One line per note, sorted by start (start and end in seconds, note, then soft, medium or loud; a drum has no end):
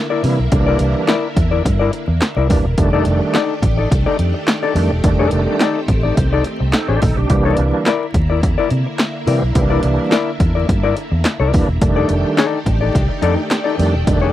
0.00 2.74 D3 medium
0.00 2.74 A#3 medium
0.00 2.74 E4 medium
0.10 0.23 E4 medium
0.10 0.24 A#4 medium
0.10 0.24 D5 medium
0.23 0.36 C3 loud
0.23 0.39 E3 medium
0.23 0.40 G3 medium
0.23 0.40 A#3 medium
0.23 0.40 E4 medium
0.23 muted hollow-body jazz guitar stroke soft
0.23 open hi-hat medium
0.39 0.50 B1 medium
0.39 muted hollow-body jazz guitar stroke soft
0.52 0.76 C2 loud
0.52 0.59 D3 medium
0.52 1.12 G3 medium
0.52 1.13 A#3 medium
0.52 1.12 D4 loud
0.52 muted hollow-body jazz guitar stroke medium
0.52 kick loud
0.52 closed hi-hat medium
0.58 1.16 E3 medium
0.66 0.79 E4 medium
0.66 0.79 A#4 medium
0.66 0.80 D5 medium
0.79 0.93 C2 loud
0.79 muted hollow-body jazz guitar stroke soft
0.79 closed hi-hat medium
0.95 muted hollow-body jazz guitar stroke soft
1.08 1.27 E4 medium
1.08 1.27 A#4 medium
1.08 1.27 D5 medium
1.08 snare loud
1.08 clap medium
1.08 closed hi-hat medium
1.36 1.60 E2 medium
1.36 muted hollow-body jazz guitar stroke soft
1.36 kick loud
1.36 closed hi-hat medium
1.51 1.64 E4 medium
1.51 1.64 A#4 medium
1.51 1.65 D5 medium
1.65 1.89 G2 loud
1.65 muted hollow-body jazz guitar stroke soft
1.65 kick loud
1.65 closed hi-hat medium
1.79 1.92 E4 medium
1.79 1.92 A#4 medium
1.79 1.93 D5 medium
1.93 muted hollow-body jazz guitar stroke soft
1.93 closed hi-hat medium
2.08 2.19 E2 medium
2.08 muted hollow-body jazz guitar stroke soft
2.21 muted hollow-body jazz guitar stroke soft
2.21 snare loud
2.21 clap loud
2.21 closed hi-hat medium
2.37 2.48 C2 loud
2.37 2.49 E4 medium
2.37 2.49 A#4 medium
2.37 2.49 D5 medium
2.49 2.63 D#1 loud
2.49 2.65 E3 medium
2.49 2.66 G3 medium
2.49 2.65 A#3 medium
2.49 2.66 D4 medium
2.49 muted hollow-body jazz guitar stroke soft
2.49 kick loud
2.49 open hi-hat medium
2.65 2.76 E1 loud
2.65 muted hollow-body jazz guitar stroke soft
2.77 3.02 F1 loud
2.77 7.26 D#3 medium
2.77 3.38 D#3 medium
2.77 3.38 G3 medium
2.77 7.26 A3 medium
2.77 3.38 A3 medium
2.77 5.02 D4 medium
2.77 3.39 D4 loud
2.77 7.26 G4 medium
2.77 muted hollow-body jazz guitar stroke soft
2.77 kick loud
2.77 closed hi-hat loud
2.93 3.05 D#4 medium
2.93 3.06 A4 medium
2.93 3.07 D5 medium
3.05 3.19 F1 loud
3.05 muted hollow-body jazz guitar stroke soft
3.05 closed hi-hat medium
3.22 muted hollow-body jazz guitar stroke medium
3.34 3.53 D#4 medium
3.34 3.53 A4 medium
3.34 3.54 D5 medium
3.34 snare loud
3.34 clap medium
3.34 closed hi-hat medium
3.62 3.86 A1 medium
3.62 muted hollow-body jazz guitar stroke soft
3.62 kick loud
3.62 closed hi-hat medium
3.77 3.90 D#4 medium
3.77 3.91 A4 medium
3.77 3.91 D5 medium
3.91 4.04 C2 loud
3.91 muted hollow-body jazz guitar stroke medium
3.91 kick loud
3.91 closed hi-hat loud
4.06 4.18 D#4 medium
4.06 4.18 A4 medium
4.06 4.19 D5 loud
4.19 4.32 F2 loud
4.19 muted hollow-body jazz guitar stroke soft
4.19 closed hi-hat medium
4.34 muted hollow-body jazz guitar stroke medium
4.48 muted hollow-body jazz guitar stroke soft
4.48 snare loud
4.48 clap loud
4.48 closed hi-hat medium
4.63 4.75 D#4 medium
4.63 4.75 A4 medium
4.63 4.76 D5 medium
4.75 4.88 F2 loud
4.75 4.91 D#3 medium
4.75 4.91 G3 medium
4.75 4.91 A3 medium
4.75 4.91 D4 loud
4.75 muted hollow-body jazz guitar stroke soft
4.75 open hi-hat medium
4.91 5.02 E1 medium
4.91 muted hollow-body jazz guitar stroke soft
5.04 5.28 F1 loud
5.04 5.64 D#3 medium
5.04 5.64 G3 medium
5.04 5.64 A3 medium
5.04 7.27 C4 medium
5.04 5.65 D4 medium
5.04 muted hollow-body jazz guitar stroke medium
5.04 kick loud
5.04 closed hi-hat loud
5.19 5.31 D#4 medium
5.19 5.31 A4 medium
5.19 5.32 D5 medium
5.31 5.45 F1 medium
5.31 muted hollow-body jazz guitar stroke soft
5.31 closed hi-hat medium
5.47 muted hollow-body jazz guitar stroke soft
5.60 5.79 D#4 medium
5.60 5.79 A4 medium
5.60 5.80 D5 medium
5.60 snare loud
5.60 clap medium
5.60 closed hi-hat medium
5.88 6.12 A1 medium
5.88 muted hollow-body jazz guitar stroke soft
5.88 kick medium
5.88 closed hi-hat medium
6.03 6.16 D#4 soft
6.03 6.17 A4 medium
6.03 6.17 D5 medium
6.17 6.41 C2 loud
6.17 muted hollow-body jazz guitar stroke soft
6.17 kick medium
6.17 closed hi-hat medium
6.33 6.45 D#4 medium
6.33 6.46 A4 medium
6.33 6.46 D5 medium
6.44 muted hollow-body jazz guitar stroke soft
6.44 closed hi-hat medium
6.60 6.71 C2 medium
6.60 muted hollow-body jazz guitar stroke medium
6.73 6.88 D#4 medium
6.73 6.88 A4 medium
6.73 muted hollow-body jazz guitar stroke soft
6.73 snare loud
6.73 clap medium
6.73 closed hi-hat medium
6.88 7.00 A1 medium
6.88 7.00 D#4 medium
6.88 7.01 G4 medium
6.88 7.01 A4 medium
6.88 7.01 C5 medium
6.88 7.01 D5 medium
7.02 7.15 A#1 medium
7.02 7.16 D#4 medium
7.02 7.16 A4 medium
7.02 muted hollow-body jazz guitar stroke soft
7.02 kick loud
7.02 open hi-hat medium
7.17 7.28 B1 medium
7.17 7.29 D4 medium
7.17 7.44 G4 medium
7.17 muted hollow-body jazz guitar stroke soft
7.30 7.53 C2 loud
7.30 11.78 D3 medium
7.30 7.90 E3 medium
7.30 7.90 G3 medium
7.30 7.90 A#3 medium
7.30 11.78 A#3 medium
7.30 7.90 D4 loud
7.30 11.78 E4 medium
7.30 muted hollow-body jazz guitar stroke soft
7.30 kick loud
7.30 closed hi-hat medium
7.45 7.57 E4 medium
7.45 7.58 A#4 medium
7.45 7.59 D5 medium
7.57 7.71 C2 loud
7.57 muted hollow-body jazz guitar stroke soft
7.57 closed hi-hat medium
7.74 muted hollow-body jazz guitar stroke soft
7.86 8.05 E4 medium
7.86 8.05 A#4 medium
7.86 8.06 D5 medium
7.86 snare loud
7.86 clap medium
7.86 closed hi-hat medium
8.14 8.43 D#2 medium
8.14 muted hollow-body jazz guitar stroke soft
8.14 kick medium
8.14 closed hi-hat medium
8.30 8.42 E4 soft
8.30 8.43 A#4 medium
8.30 8.43 D5 medium
8.43 8.56 E2 loud
8.43 muted hollow-body jazz guitar stroke soft
8.43 kick loud
8.43 closed hi-hat medium
8.58 8.70 E4 medium
8.58 8.71 A#4 medium
8.58 8.71 D5 medium
8.70 8.84 C3 loud
8.70 muted hollow-body jazz guitar stroke soft
8.70 closed hi-hat medium
8.86 muted hollow-body jazz guitar stroke soft
8.99 muted hollow-body jazz guitar stroke soft
8.99 snare loud
8.99 clap loud
8.99 closed hi-hat medium
9.27 9.40 C3 loud
9.27 9.43 E3 medium
9.27 9.43 G3 medium
9.27 9.43 A#3 medium
9.27 9.43 C4 medium
9.27 9.42 E4 medium
9.27 9.42 A#4 medium
9.27 9.41 D5 medium
9.27 open hi-hat medium
9.42 9.53 B1 medium
9.42 muted hollow-body jazz guitar stroke soft
9.55 9.79 C2 loud
9.55 10.15 E3 medium
9.55 10.16 G3 medium
9.55 10.16 A#3 medium
9.55 9.62 C4 medium
9.55 muted hollow-body jazz guitar stroke soft
9.55 kick loud
9.55 closed hi-hat loud
9.62 10.19 D4 loud
9.70 9.82 E4 medium
9.70 9.82 A#4 medium
9.70 9.83 D5 medium
9.83 9.97 C2 medium
9.83 muted hollow-body jazz guitar stroke soft
9.83 closed hi-hat medium
9.99 muted hollow-body jazz guitar stroke soft
10.11 10.30 E4 medium
10.11 10.30 A#4 medium
10.11 10.31 D5 medium
10.11 snare loud
10.11 clap medium
10.11 closed hi-hat medium
10.40 10.64 E2 medium
10.40 muted hollow-body jazz guitar stroke soft
10.40 kick loud
10.40 closed hi-hat medium
10.55 10.67 E4 soft
10.55 10.68 A#4 medium
10.55 10.68 D5 medium
10.69 10.92 G2 loud
10.69 muted hollow-body jazz guitar stroke soft
10.69 kick loud
10.69 closed hi-hat medium
10.83 10.96 E4 medium
10.83 10.96 A#4 medium
10.83 10.97 D5 loud
10.97 muted hollow-body jazz guitar stroke soft
10.97 closed hi-hat medium
11.11 11.23 E2 loud
11.11 muted hollow-body jazz guitar stroke medium
11.25 muted hollow-body jazz guitar stroke soft
11.25 snare loud
11.25 clap loud
11.25 closed hi-hat loud
11.40 11.51 C2 medium
11.40 11.53 E4 medium
11.40 11.53 A#4 medium
11.40 11.54 D5 medium
11.53 11.66 D#1 loud
11.53 11.69 E3 loud
11.53 11.69 G3 medium
11.53 11.69 A#3 medium
11.53 11.69 D4 loud
11.53 muted hollow-body jazz guitar stroke soft
11.53 kick loud
11.53 open hi-hat medium
11.68 11.79 E1 loud
11.68 muted hollow-body jazz guitar stroke soft
11.81 12.05 F1 medium
11.81 14.32 D#3 medium
11.81 12.42 D#3 medium
11.81 12.42 G3 medium
11.81 14.32 A3 medium
11.81 12.42 A3 medium
11.81 14.32 D4 medium
11.81 12.42 D4 medium
11.81 14.32 G4 loud
11.81 muted hollow-body jazz guitar stroke soft
11.81 kick loud
11.81 closed hi-hat loud
11.96 12.09 D#4 medium
11.96 12.09 A4 medium
11.96 12.10 D5 loud
12.09 12.22 F1 loud
12.09 muted hollow-body jazz guitar stroke soft
12.09 closed hi-hat medium
12.25 muted hollow-body jazz guitar stroke soft
12.37 12.58 D#4 medium
12.37 12.58 A4 medium
12.37 12.59 D5 loud
12.37 snare loud
12.37 clap medium
12.37 closed hi-hat medium
12.65 12.90 A1 medium
12.65 muted hollow-body jazz guitar stroke soft
12.65 kick medium
12.65 closed hi-hat medium
12.81 12.95 D#4 soft
12.81 12.94 A4 medium
12.81 12.94 D5 medium
12.95 13.07 C2 loud
12.95 kick loud
12.95 closed hi-hat medium
13.09 muted hollow-body jazz guitar stroke medium
13.22 13.35 F2 loud
13.22 13.40 D#4 medium
13.22 13.37 A4 loud
13.22 13.36 D5 loud
13.22 closed hi-hat medium
13.37 muted hollow-body jazz guitar stroke soft
13.50 muted hollow-body jazz guitar stroke soft
13.50 snare loud
13.50 clap loud
13.50 closed hi-hat loud
13.64 13.77 D#4 medium
13.64 13.78 A4 medium
13.64 13.78 D5 medium
13.78 13.91 F2 loud
13.78 13.95 D#3 medium
13.78 13.95 G3 medium
13.78 13.95 A3 medium
13.78 13.95 D4 loud
13.78 muted hollow-body jazz guitar stroke soft
13.78 open hi-hat medium
13.94 14.05 E1 medium
13.94 muted hollow-body jazz guitar stroke soft
14.07 14.31 F1 loud
14.07 14.32 D#3 medium
14.07 14.32 G3 medium
14.07 14.14 G#3 medium
14.07 14.32 D4 loud
14.07 muted hollow-body jazz guitar stroke soft
14.07 kick loud
14.07 closed hi-hat medium
14.14 14.32 A3 medium
14.21 14.32 D#4 medium
14.21 14.32 A4 medium
14.21 14.32 D5 medium